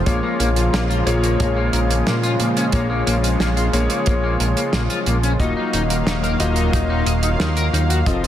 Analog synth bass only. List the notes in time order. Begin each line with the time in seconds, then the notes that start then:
0.07 A#1
0.40 A#1
0.73 A#1
1.07 A#1
1.40 A#1
1.73 A#1
2.07 A#2
2.40 A#2
2.73 A#1
3.07 A#1
3.40 A#1
3.73 A#1
4.07 A#1
4.40 A#1
4.73 A#1
5.07 A#1
5.40 D#1
5.74 D#1
6.07 D#1
6.40 D#1
6.73 D#1
7.06 D#1
7.40 D#2
7.73 D#2
8.06 F1